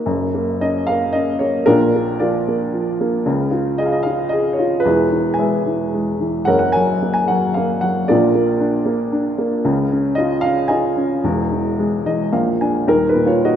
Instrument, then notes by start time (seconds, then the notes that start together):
upright piano
0.06 F#1 F#2
0.34 A#3
0.61 C#4 D#5
0.87 A#3 F5
1.13 C#4 D#5
1.39 A#3 C#5
1.66 A#1 A#2 D4 F4 A#4
1.95 A#3
2.19 F3 F4 A#4 D5
2.48 A#3
2.74 F3
3.01 A#3
3.26 C#2 C#3
3.51 F4
3.78 G#4 D#5
3.86 F5
3.92 D#5
4.03 F4 F5
4.29 G#4 D#5
4.53 C#5
4.59 F4
4.80 B4
4.85 E1 E2 E4 G#4
5.11 E3
5.34 G#5
5.39 G#3 B4 E5
5.66 E3
5.94 G#3
6.20 E3
6.45 F#1 F#2 A#4 C#5 F#5
6.59 F#5
6.72 F#3 C#5 G#5
7.02 A#3
7.14 G#5
7.28 F#3 F#5
7.54 A#3 F5
7.81 F#3 F#5
8.08 A#1 A#2 F4 A#4 D5
8.35 A#3
8.60 D4
8.86 A#3
9.12 D4
9.38 A#3
9.65 C#2 C#3
9.92 C#4
10.15 F4 D#5
10.41 C#4 F5
10.68 F4 D#5 F5 G#5
10.97 C#4
11.24 E1 E2
11.52 E3
11.79 G#3
12.06 E3 D#5
12.32 A#1 A#2 F5
12.61 D4 G#5
12.87 D#1 D#2 D#4 A#4
13.08 D#4 B4
13.15 A#2
13.26 F4 C#5
13.42 D#3 F#4 D#5